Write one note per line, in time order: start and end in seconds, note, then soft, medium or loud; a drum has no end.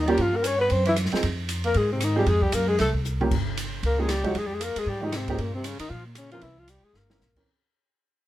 0.00 0.17 D#2 medium
0.00 0.12 D#4 medium
0.06 0.18 F3 medium
0.06 0.19 G3 medium
0.06 0.18 A#3 medium
0.06 0.18 C#4 medium
0.06 0.18 G4 medium
0.06 ride soft
0.10 0.23 G4 medium
0.17 0.68 G2 medium
0.17 0.34 F3 medium
0.17 ride soft
0.21 0.38 F4 medium
0.33 0.45 A#3 medium
0.33 0.48 A#4 medium
0.43 0.57 C#4 medium
0.43 0.60 C#5 loud
0.43 hi-hat pedal medium
0.43 ride medium
0.58 0.71 B3 medium
0.58 0.74 B4 medium
0.69 1.10 F#2 medium
0.69 0.85 C4 medium
0.69 0.87 C5 medium
0.69 ride medium
0.85 0.96 E3 medium
0.85 0.94 E4 medium
0.85 ride soft
0.96 cross-stick medium
0.96 hi-hat pedal medium
0.96 ride medium
1.05 snare soft
1.12 1.22 F3 medium
1.12 1.22 C4 medium
1.12 1.22 D#4 medium
1.12 1.23 G#4 medium
1.12 muted upright bass stroke soft
1.12 snare soft
1.12 ride soft
1.23 1.72 F2 medium
1.23 ride medium
1.49 hi-hat pedal medium
1.49 ride medium
1.64 1.79 A#3 medium
1.64 1.79 A#4 loud
1.64 ride soft
1.74 2.24 G#2 medium
1.74 1.92 G#3 medium
1.74 1.92 G#4 medium
1.74 ride medium
1.92 2.05 C3 medium
1.92 2.06 C4 medium
2.01 2.17 D#3 medium
2.01 2.18 D#4 medium
2.01 cross-stick medium
2.01 hi-hat pedal medium
2.01 ride medium
2.16 2.26 F3 medium
2.16 2.28 G3 medium
2.16 2.26 C4 medium
2.16 2.26 D#4 medium
2.16 2.30 G4 medium
2.16 2.26 G#4 medium
2.26 2.51 F2 medium
2.26 2.43 G#3 medium
2.26 2.45 G#4 loud
2.26 ride medium
2.42 2.55 G3 medium
2.42 2.56 G4 medium
2.42 kick soft
2.52 2.77 F#2 medium
2.52 2.67 A#3 medium
2.52 2.69 A#4 medium
2.52 hi-hat pedal medium
2.52 ride medium
2.67 2.78 G#3 medium
2.67 2.79 G#4 medium
2.79 3.28 C2 medium
2.79 2.93 A3 medium
2.79 2.90 A4 medium
2.79 snare soft
2.79 ride soft
2.94 kick soft
3.05 hi-hat pedal medium
3.21 3.30 F3 medium
3.21 3.30 A#3 medium
3.21 3.30 C#4 medium
3.21 3.30 G4 medium
3.21 mid tom medium
3.31 3.80 G1 medium
3.31 kick medium
3.31 crash medium
3.57 hi-hat pedal soft
3.57 ride medium
3.83 4.32 C#2 medium
3.83 4.01 A#3 medium
3.83 4.01 A#4 medium
3.83 ride medium
3.98 4.08 F3 medium
3.98 4.11 G#3 medium
3.98 4.08 A#3 medium
3.98 4.08 C#4 soft
3.98 4.08 G4 medium
3.98 4.13 G#4 medium
4.09 4.24 G3 medium
4.09 4.25 G4 medium
4.09 cross-stick medium
4.09 snare soft
4.09 hi-hat pedal soft
4.09 ride medium
4.24 4.33 F3 medium
4.24 4.39 F#3 medium
4.24 4.33 G#3 medium
4.24 4.34 D#4 medium
4.24 4.40 F#4 medium
4.24 4.34 G4 medium
4.24 kick medium
4.24 ride soft
4.35 4.73 F2 medium
4.35 4.48 G#3 medium
4.35 4.49 G#4 medium
4.35 ride medium
4.46 4.56 G3 medium
4.46 4.56 G4 medium
4.54 4.62 G#3 medium
4.54 4.65 G#4 medium
4.61 4.80 A#3 medium
4.61 4.81 A#4 medium
4.61 hi-hat pedal medium
4.61 ride medium
4.76 4.89 G#3 medium
4.76 4.91 G#4 medium
4.76 muted upright bass stroke soft
4.76 ride medium
4.86 5.36 G#2 medium
4.86 5.03 G3 medium
4.86 5.05 G4 medium
5.02 5.14 D#3 medium
5.02 5.12 F3 medium
5.02 5.11 G#3 medium
5.02 5.12 D#4 medium
5.02 5.18 D#4 medium
5.02 5.12 G4 medium
5.12 5.30 C3 medium
5.12 5.31 C4 medium
5.12 cross-stick medium
5.12 snare soft
5.12 hi-hat pedal soft
5.12 ride medium
5.28 5.42 G#2 medium
5.28 5.38 F3 medium
5.28 5.43 G#3 medium
5.28 5.38 A#3 medium
5.28 5.38 C#4 medium
5.28 5.38 G4 medium
5.28 kick soft
5.28 ride soft
5.38 5.77 G2 medium
5.38 5.55 A#2 medium
5.38 5.54 A#3 medium
5.38 ride soft
5.54 5.69 C3 medium
5.54 5.66 C4 medium
5.64 5.79 C#3 medium
5.64 5.79 C#4 medium
5.64 hi-hat pedal medium
5.64 ride medium
5.79 5.94 D#3 medium
5.79 5.91 D#4 medium
5.79 muted upright bass stroke soft
5.79 ride medium
5.90 6.39 A#2 medium
5.90 6.06 F3 medium
5.90 6.05 F4 medium
6.05 6.20 A#2 soft
6.05 6.19 A#3 soft
6.15 6.33 C#3 medium
6.15 6.31 C#4 medium
6.15 cross-stick medium
6.15 hi-hat pedal medium
6.15 ride medium
6.31 6.42 E3 medium
6.31 6.46 F3 medium
6.31 6.42 C4 medium
6.31 6.42 C#4 medium
6.31 6.44 F4 medium
6.31 6.42 A#4 medium
6.31 ride soft
6.41 6.80 C2 medium
6.41 6.60 E3 medium
6.41 6.60 E4 medium
6.41 ride medium
6.58 6.71 F3 medium
6.58 6.71 F4 medium
6.68 6.86 G3 medium
6.68 6.86 G4 medium
6.68 hi-hat pedal medium
6.68 ride medium
6.83 6.96 G#3 medium
6.83 6.98 G#4 medium
6.83 muted upright bass stroke soft
6.93 7.18 G1 medium
6.93 7.41 A#3 medium
6.93 7.42 A#4 medium
6.93 snare soft
7.10 7.19 E3 medium
7.10 7.19 C4 medium
7.10 7.19 C#4 medium
7.10 7.19 A#4 medium
7.10 snare medium
7.20 7.44 A#1 medium
7.20 snare soft
7.20 hi-hat pedal soft
7.36 7.45 E3 medium
7.36 7.46 C4 medium
7.36 7.46 C#4 medium
7.36 7.46 A#4 medium
7.36 kick medium
7.36 crash medium